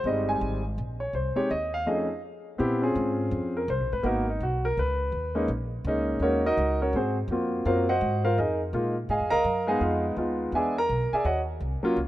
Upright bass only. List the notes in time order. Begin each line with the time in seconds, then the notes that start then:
0.04 G1
0.41 G#1
0.78 A#1
1.13 C2
1.37 muted upright bass stroke
1.50 D#2
2.60 A#2
2.95 G#2
3.31 F2
3.68 C2
3.80 A#1
3.92 G#1
4.03 G#1
4.40 B1
4.77 C#2
5.12 D#2
5.48 A#1
5.84 C#2
6.20 D#2
6.57 C#2
6.93 G#2
7.28 F2
7.65 F#2
8.01 G#2
8.38 F2
8.73 A#2
9.09 G#2
9.20 F2
9.32 C#2
9.44 F#2
9.81 F2
10.16 D#2
10.52 E2
10.89 B1
11.12 muted upright bass stroke
11.24 D#2
11.60 C2
11.82 muted upright bass stroke
11.96 C#2